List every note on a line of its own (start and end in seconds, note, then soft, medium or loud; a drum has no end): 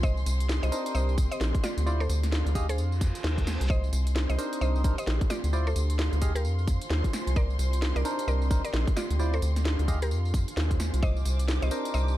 0.00 0.24 C2 loud
0.00 2.15 C4 medium
0.00 0.78 F4 medium
0.00 0.77 C5 medium
0.00 0.17 C5 medium
0.00 0.17 D#5 loud
0.00 3.69 C6 medium
0.00 kick loud
0.00 tambourine soft
0.17 tambourine soft
0.24 0.60 C2 loud
0.24 2.15 G4 medium
0.24 open hi-hat loud
0.24 tambourine medium
0.30 1.86 D#6 medium
0.40 closed hi-hat medium
0.40 tambourine soft
0.49 snare loud
0.49 tambourine soft
0.63 0.71 C2 medium
0.63 0.79 C5 medium
0.63 0.79 D#5 medium
0.63 closed hi-hat soft
0.63 tambourine soft
0.72 1.16 D4 medium
0.72 1.16 D#4 medium
0.72 1.16 A#4 medium
0.72 1.16 C5 medium
0.72 open hi-hat loud
0.72 tambourine medium
0.86 closed hi-hat medium
0.86 tambourine soft
0.95 1.29 C2 loud
0.95 1.13 C5 medium
0.95 1.13 D#5 medium
0.95 tambourine soft
1.09 tambourine soft
1.18 kick loud
1.18 open hi-hat loud
1.18 tambourine medium
1.31 1.48 C5 medium
1.31 1.48 D#5 medium
1.31 closed hi-hat medium
1.31 tambourine soft
1.41 1.53 A#1 loud
1.41 snare loud
1.41 tambourine soft
1.55 kick loud
1.55 closed hi-hat medium
1.55 tambourine soft
1.64 1.82 F4 medium
1.64 1.82 D5 loud
1.64 snare medium
1.64 open hi-hat loud
1.64 tambourine medium
1.77 2.08 D2 loud
1.77 closed hi-hat medium
1.77 tambourine soft
1.86 3.01 D4 medium
1.86 2.03 E4 medium
1.86 2.03 F4 medium
1.86 2.03 C5 medium
1.86 2.03 D5 loud
1.86 tambourine soft
2.00 2.17 A4 medium
2.00 2.17 C5 medium
2.00 tambourine soft
2.09 2.43 D2 loud
2.09 open hi-hat loud
2.09 tambourine medium
2.13 3.01 F5 medium
2.18 2.55 A4 medium
2.23 snare soft
2.23 closed hi-hat medium
2.23 tambourine soft
2.32 snare loud
2.32 tambourine soft
2.46 2.79 D2 medium
2.46 closed hi-hat soft
2.46 tambourine soft
2.54 4.44 F4 medium
2.54 2.67 G4 medium
2.54 2.67 G#4 medium
2.54 2.67 D#5 medium
2.54 2.67 F5 medium
2.54 kick medium
2.54 open hi-hat loud
2.54 tambourine medium
2.69 2.78 G#4 medium
2.69 2.78 C5 loud
2.69 closed hi-hat medium
2.69 tambourine soft
2.78 3.12 F2 loud
2.78 closed hi-hat soft
2.78 tambourine soft
2.78 reverse cymbal medium
2.92 tambourine soft
3.01 kick loud
3.01 open hi-hat loud
3.01 tambourine medium
3.08 4.37 C5 medium
3.08 3.70 G#5 medium
3.15 closed hi-hat medium
3.15 tambourine soft
3.24 3.58 D#2 medium
3.24 snare loud
3.24 tambourine soft
3.38 kick medium
3.38 closed hi-hat medium
3.38 tambourine soft
3.47 snare medium
3.47 open hi-hat loud
3.47 tambourine medium
3.61 3.91 C2 loud
3.61 closed hi-hat medium
3.61 tambourine soft
3.70 5.81 C4 medium
3.70 3.84 C5 medium
3.70 3.84 D#5 loud
3.70 11.04 C6 medium
3.70 kick loud
3.70 tambourine soft
3.84 tambourine soft
3.93 4.27 C2 loud
3.93 open hi-hat loud
3.93 tambourine medium
4.07 5.81 G4 loud
4.07 closed hi-hat medium
4.07 tambourine soft
4.12 5.53 D#6 medium
4.12 snare loud
4.12 tambourine soft
4.29 4.37 C2 medium
4.29 4.46 C5 medium
4.29 4.46 D#5 loud
4.29 closed hi-hat soft
4.29 tambourine soft
4.38 4.82 D4 medium
4.38 4.82 D#4 medium
4.38 4.82 A#4 medium
4.38 4.82 C5 loud
4.38 open hi-hat loud
4.38 tambourine medium
4.53 closed hi-hat medium
4.53 tambourine soft
4.61 4.95 C2 loud
4.61 4.80 C5 medium
4.61 4.80 D#5 loud
4.61 tambourine soft
4.76 tambourine soft
4.84 4.96 D4 medium
4.84 4.96 D#4 medium
4.84 4.96 A#4 medium
4.84 4.96 C5 loud
4.84 kick loud
4.84 open hi-hat loud
4.84 tambourine medium
4.98 5.14 C5 medium
4.98 5.14 D#5 medium
4.98 closed hi-hat medium
4.98 tambourine soft
5.07 5.19 A#1 loud
5.07 snare loud
5.07 tambourine soft
5.21 kick loud
5.21 closed hi-hat medium
5.21 tambourine soft
5.30 5.49 F4 medium
5.30 5.49 D5 medium
5.30 snare medium
5.30 open hi-hat loud
5.30 tambourine medium
5.44 5.74 D2 loud
5.44 closed hi-hat medium
5.44 tambourine soft
5.53 6.68 D4 medium
5.53 5.70 E4 medium
5.53 5.70 F4 medium
5.53 5.70 C5 medium
5.53 5.70 D5 medium
5.53 tambourine soft
5.66 6.22 A4 medium
5.66 5.83 A4 medium
5.66 5.83 C5 loud
5.66 tambourine soft
5.76 6.10 D2 loud
5.76 open hi-hat loud
5.76 tambourine medium
5.86 6.68 F5 medium
5.86 closed hi-hat medium
5.86 tambourine soft
5.99 snare loud
5.99 tambourine soft
6.13 6.46 D2 medium
6.13 closed hi-hat soft
6.13 tambourine soft
6.22 8.11 F4 medium
6.22 6.33 G4 medium
6.22 6.33 G#4 medium
6.22 6.33 D#5 medium
6.22 6.33 F5 medium
6.22 kick medium
6.22 open hi-hat loud
6.22 tambourine medium
6.34 6.45 G4 medium
6.34 6.45 A#4 medium
6.34 8.11 C5 medium
6.34 closed hi-hat medium
6.34 tambourine soft
6.44 6.79 F2 loud
6.44 tambourine soft
6.59 tambourine soft
6.68 kick loud
6.68 open hi-hat loud
6.68 tambourine medium
6.75 7.36 G#5 medium
6.82 closed hi-hat medium
6.82 tambourine soft
6.90 7.02 D#2 loud
6.90 snare loud
6.90 tambourine soft
7.04 kick medium
7.04 closed hi-hat medium
7.04 tambourine soft
7.13 snare medium
7.13 open hi-hat loud
7.13 tambourine medium
7.27 7.57 C2 loud
7.27 closed hi-hat medium
7.27 tambourine soft
7.36 9.48 C4 medium
7.36 7.50 A#4 medium
7.36 7.50 D5 loud
7.36 kick loud
7.36 tambourine soft
7.50 9.48 G4 medium
7.50 tambourine soft
7.59 7.93 C2 loud
7.59 open hi-hat loud
7.59 tambourine medium
7.73 closed hi-hat medium
7.73 tambourine soft
7.82 snare loud
7.82 tambourine soft
7.96 8.04 C2 medium
7.96 8.12 A#4 medium
7.96 8.12 D5 medium
7.96 closed hi-hat soft
7.96 tambourine soft
8.05 8.49 D4 medium
8.05 8.49 D#4 medium
8.05 8.49 A#4 medium
8.05 8.49 C5 loud
8.05 open hi-hat loud
8.05 tambourine medium
8.19 9.20 D#5 medium
8.19 closed hi-hat medium
8.19 tambourine soft
8.28 8.62 C2 loud
8.28 8.46 A#4 medium
8.28 8.46 D5 medium
8.28 tambourine soft
8.42 tambourine soft
8.51 8.62 D4 medium
8.51 8.62 D#4 medium
8.51 8.62 A#4 medium
8.51 8.62 C5 loud
8.51 kick loud
8.51 open hi-hat loud
8.51 tambourine medium
8.65 8.81 A#4 medium
8.65 8.81 D5 medium
8.65 closed hi-hat medium
8.65 tambourine soft
8.74 8.86 A#1 loud
8.74 snare loud
8.74 tambourine soft
8.87 kick loud
8.87 closed hi-hat medium
8.87 tambourine soft
8.97 9.15 F4 medium
8.97 9.15 D5 loud
8.97 snare medium
8.97 open hi-hat loud
8.97 tambourine medium
9.10 9.40 D2 loud
9.10 closed hi-hat medium
9.10 tambourine soft
9.19 10.34 D4 medium
9.19 9.36 E4 medium
9.19 9.36 F4 medium
9.19 9.36 C5 medium
9.19 9.36 D5 loud
9.19 tambourine soft
9.33 9.50 A4 medium
9.33 9.50 C5 loud
9.33 tambourine soft
9.42 9.76 D2 loud
9.42 open hi-hat loud
9.42 tambourine medium
9.52 9.88 A4 medium
9.52 10.34 F5 medium
9.56 snare soft
9.56 closed hi-hat medium
9.56 tambourine soft
9.65 snare loud
9.65 tambourine soft
9.79 10.12 D2 medium
9.79 closed hi-hat soft
9.79 tambourine soft
9.88 11.77 F4 medium
9.88 9.99 G4 medium
9.88 9.99 G#4 medium
9.88 9.99 D#5 medium
9.88 9.99 F5 medium
9.88 kick medium
9.88 open hi-hat loud
9.88 tambourine medium
10.02 10.11 G4 medium
10.02 10.11 A#4 loud
10.02 closed hi-hat medium
10.02 tambourine soft
10.11 10.45 F2 loud
10.11 tambourine soft
10.25 tambourine soft
10.34 kick loud
10.34 open hi-hat loud
10.34 tambourine medium
10.40 11.77 C5 medium
10.40 11.02 G#5 medium
10.48 closed hi-hat medium
10.48 tambourine soft
10.57 10.91 D#2 medium
10.57 snare loud
10.57 tambourine soft
10.71 kick medium
10.71 closed hi-hat soft
10.71 tambourine soft
10.80 snare medium
10.80 open hi-hat loud
10.80 tambourine medium
10.94 11.24 C2 loud
10.94 closed hi-hat medium
10.94 tambourine soft
11.02 12.17 C4 medium
11.02 11.17 C5 medium
11.02 11.17 D#5 loud
11.02 12.17 D6 medium
11.02 kick loud
11.02 tambourine soft
11.17 12.17 G4 medium
11.17 tambourine soft
11.26 11.60 C2 loud
11.26 open hi-hat loud
11.26 tambourine medium
11.39 closed hi-hat medium
11.39 tambourine soft
11.48 snare loud
11.48 tambourine soft
11.62 11.70 C2 medium
11.62 11.78 C5 medium
11.62 11.78 D#5 medium
11.62 closed hi-hat soft
11.62 tambourine soft
11.71 12.15 D4 medium
11.71 12.15 D#4 medium
11.71 12.15 A#4 medium
11.71 12.15 C5 loud
11.71 open hi-hat loud
11.71 tambourine medium
11.85 12.17 D#5 medium
11.85 closed hi-hat medium
11.85 tambourine soft
11.94 12.17 C2 loud
11.94 12.13 C5 medium
11.94 12.13 D#5 medium
11.94 tambourine soft
12.08 tambourine soft